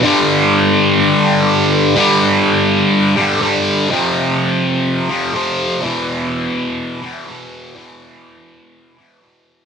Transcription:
X:1
M:4/4
L:1/8
Q:1/4=124
K:Gmix
V:1 name="Overdriven electric guitar" clef=bass
[G,,D,G,]8 | [G,,D,G,]4- [G,,D,G,] [G,,D,G,] [G,,D,G,]2 | [F,,C,F,]4- [F,,C,F,] [F,,C,F,] [F,,C,F,]2 | [E,,B,,E,]4- [E,,B,,E,] [E,,B,,E,] [E,,B,,E,]2 |
[E,,B,,E,]4- [E,,B,,E,] [E,,B,,E,] [E,,B,,E,]2 |]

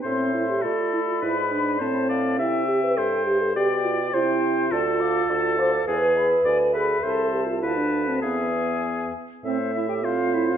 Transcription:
X:1
M:2/4
L:1/16
Q:1/4=102
K:Am
V:1 name="Flute"
c'4 b4- | b4 a4 | g8 | g4 g4 |
a2 d'2 a2 d'2 | ^g2 b2 g2 b2 | a4 a4 | ^g6 z2 |
c2 e g f2 e f |]
V:2 name="Clarinet"
e4 d4- | d4 c2 f2 | e8 | d4 c4 |
d2 f2 d2 f2 | B2 e2 d2 e2 | e4 f4 | e6 z2 |
C2 E G F2 E F |]
V:3 name="Oboe"
c4 A4 | B4 c2 d2 | e4 c4 | d4 c4 |
A8 | ^G4 d2 B2 | c2 z2 B4 | ^G6 z2 |
e4 c4 |]
V:4 name="French horn"
C2 E G F2 E F | E2 D2 C4 | E2 G B A2 G A | G2 F2 E4 |
F6 c2 | B6 ^G2 | A2 G F E D2 C | B,6 z2 |
A,4 C4 |]
V:5 name="Bassoon" clef=bass
A,,4 A,4 | ^G,,4 A,,4 | C,4 G,,4 | B,,4 C,4 |
D,,4 D,,4 | E,,4 D,,4 | C,,4 D,,4 | E,,6 z2 |
A,,8 |]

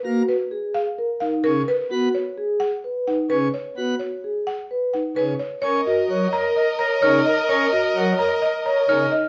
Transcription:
X:1
M:4/4
L:1/8
Q:1/4=129
K:Dbmix
V:1 name="Glockenspiel"
z8 | z8 | z8 | [K:F#] z6 e' z |
z6 e' z |]
V:2 name="Marimba"
z c z f z f B c | z d z g z g c d | z d z g z g c d | [K:F#] c d z a d a c d |
c d z a d a c d |]
V:3 name="Violin section"
z8 | z8 | z8 | [K:F#] [Ad]8- |
[Ad]6- [Ad] z |]
V:4 name="Clarinet"
z8 | z8 | z8 | [K:F#] A A A A A A A A |
A A A A A A A z |]
V:5 name="Vibraphone"
G z A z B E z2 | G z A z c E z2 | G z A z c E z2 | [K:F#] A F c A z c D z |
A F c A z c D z |]
V:6 name="Pipe organ" clef=bass
B, z4 z D, z | C z4 z D, z | C z4 z D, z | [K:F#] C z F, z3 C, z |
C z F, z3 C, z |]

